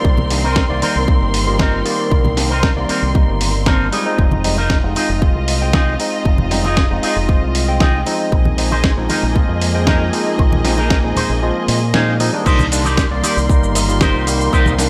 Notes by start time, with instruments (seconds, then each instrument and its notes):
Already playing: tine electric piano D#3 G3 A#3 D5, string section C4 A#4 C6
0.04 fingered electric bass C2, muted clean electric guitar stroke, kick
0.17 muted clean electric guitar stroke, high conga, low conga
0.30 tine electric piano D#3 G3 A#3 D4, muted clean electric guitar stroke, open hi-hat
0.44 clean electric guitar C4 D#4 A#4
0.56 kick, snare
0.69 fingered electric bass C2, tine electric piano D#3 G3 A#3 D5
0.82 clean electric guitar C4 D#4 A#4, open hi-hat, high conga
0.95 fingered electric bass C2
1.07 tine electric piano D#3 G3 A#3 D#4, muted clean electric guitar stroke, kick
1.21 fingered electric bass G1
1.34 open hi-hat
1.47 tine electric piano D#3 G3 A#3 F4
1.59 clean electric guitar C4 D#4 A#4, kick, snare, high conga
1.85 tine electric piano D#3 G3 A#3 D5, open hi-hat
1.98 muted clean electric guitar stroke
2.11 fingered electric bass C2, muted clean electric guitar stroke, kick
2.24 muted clean electric guitar stroke, high conga, low conga
2.37 tine electric piano D#3 G3 A#3 D4, muted clean electric guitar stroke, snare, open hi-hat
2.50 clean electric guitar C4 D#4 A#4
2.63 kick, snare
2.76 fingered electric bass C2, tine electric piano D#3 G3 A#3 D5
2.89 clean electric guitar C4 D#4 A#4, open hi-hat
3.02 fingered electric bass C2
3.14 tine electric piano D#3 G3 A#3 D#4, muted clean electric guitar stroke, kick
3.28 fingered electric bass G1
3.41 open hi-hat
3.66 tine electric piano D#3 G3 A#3 D4, clean electric guitar C4 D#4 A#4, kick, snare, high conga
3.92 tine electric piano G3 G#3 C4 D#4, clean electric guitar D#4 F4 G#4, string section F4 D#5, open hi-hat
4.06 tine electric piano G#3 C4 D#4
4.18 fingered electric bass F1, kick
4.31 muted clean electric guitar stroke, high conga, low conga
4.44 tine electric piano G3 G#3 C4 D#4, muted clean electric guitar stroke, open hi-hat
4.57 clean electric guitar D#4 F4 A#4, muted conga
4.70 kick, snare
4.83 fingered electric bass F1, tine electric piano G#3 C4 D#4
4.95 clean electric guitar D#4 F4 G#4, open hi-hat, muted conga, high conga
5.09 fingered electric bass F1
5.21 tine electric piano G#3 C4 F4, muted clean electric guitar stroke, kick
5.35 fingered electric bass C2
5.48 open hi-hat
5.61 tine electric piano G#3 C4 G5
5.73 clean electric guitar D#4 F4 G#4, kick, snare, high conga
5.99 tine electric piano G#3 C4 D#4, open hi-hat
6.12 muted clean electric guitar stroke
6.25 fingered electric bass F1, muted clean electric guitar stroke, kick
6.38 muted clean electric guitar stroke, high conga, low conga
6.51 tine electric piano G3 G#3 C4 D#4, muted clean electric guitar stroke, snare, open hi-hat
6.64 clean electric guitar D#4 F4 G#4, muted conga
6.77 kick, snare
6.90 fingered electric bass F1, tine electric piano G#3 C4 D#4
7.02 clean electric guitar D#4 F4 G#4, open hi-hat
7.16 fingered electric bass F1
7.28 tine electric piano G#3 C4 F4, muted clean electric guitar stroke, kick
7.42 fingered electric bass C2
7.55 open hi-hat
7.68 tine electric piano G#3 C4 G5
7.80 clean electric guitar D#4 F4 G#4, kick, snare, high conga
8.06 tine electric piano F3 G#3 C4 D#4, open hi-hat, muted conga
8.19 muted clean electric guitar stroke
8.32 fingered electric bass A#1, string section A#3 G#4 D#5, muted clean electric guitar stroke, kick
8.45 muted clean electric guitar stroke, high conga, low conga
8.57 tine electric piano F3 G#3 C4 D#4, muted clean electric guitar stroke, open hi-hat
8.71 clean electric guitar D#4 G#4 C5, muted conga
8.84 kick, snare
8.97 fingered electric bass A#1, tine electric piano F3 G#3 C4 D#4
9.09 clean electric guitar D#4 G#4 A#4, open hi-hat, muted conga, high conga
9.23 fingered electric bass A#1
9.35 tine electric piano F3 G#3 C4 F4, muted clean electric guitar stroke, kick
9.49 fingered electric bass F2
9.62 open hi-hat
9.74 tine electric piano F3 G#3 C4 G5
9.87 clean electric guitar D#4 G#4 A#4, kick, snare, high conga
10.12 tine electric piano F3 G#3 C4 D#4, open hi-hat
10.26 muted clean electric guitar stroke
10.38 fingered electric bass A#1, muted clean electric guitar stroke, kick
10.52 muted clean electric guitar stroke, muted conga, high conga, low conga
10.64 tine electric piano F3 G#3 C4 D#4, muted clean electric guitar stroke, snare, open hi-hat
10.77 clean electric guitar D#4 G#4 A#4, muted conga
10.90 kick, snare
11.03 fingered electric bass A#1, tine electric piano F3 G#3 C4 D#4
11.16 clean electric guitar D#4 G#4 C5, open hi-hat, muted conga, low conga
11.29 fingered electric bass A#1
11.42 tine electric piano F3 G#3 C4 F4, muted clean electric guitar stroke
11.68 fingered electric bass A#2, open hi-hat
11.94 tine electric piano F3 G#3 C4 D#4, clean electric guitar D#4 G#4 C5 F5, snare, high conga
12.20 tine electric piano F3 G#3 C4 D#4, clean electric guitar D#5, open hi-hat, muted conga
12.33 tine electric piano D#3 G3 A#3 D4, muted clean electric guitar stroke
12.46 fingered electric bass C2, clean electric guitar D#4 G4 A#4 C5, string section A#4 C6, kick, crash, shaker
12.59 high conga, low conga, shaker
12.71 tine electric piano D#3 G3 A#3 D4, open hi-hat, shaker
12.85 clean electric guitar D#4 G4 A#4 D5, muted conga, shaker
12.97 kick, snare, shaker
13.10 fingered electric bass C2, tine electric piano D#3 G3 A#3 D5
13.23 clean electric guitar D#4 G4 A#4 D5, open hi-hat, muted conga, high conga, shaker
13.37 fingered electric bass C2, shaker
13.49 tine electric piano D#3 G3 A#3 D#4, muted clean electric guitar stroke, kick, shaker
13.62 fingered electric bass G1, shaker
13.75 muted clean electric guitar stroke, open hi-hat, shaker
13.88 tine electric piano D#3 G3 A#3 F4, muted clean electric guitar stroke, shaker
14.01 clean electric guitar D#4 G4 A#4 C5, kick, snare, high conga, shaker
14.14 fingered electric bass C2
14.26 tine electric piano D#3 G3 A#3, open hi-hat, shaker
14.41 shaker
14.52 fingered electric bass C2, clean electric guitar D#4 G4 A#4 C5, kick, shaker
14.66 high conga, low conga, shaker
14.78 tine electric piano D#3 G3 A#3 D4, snare, open hi-hat, shaker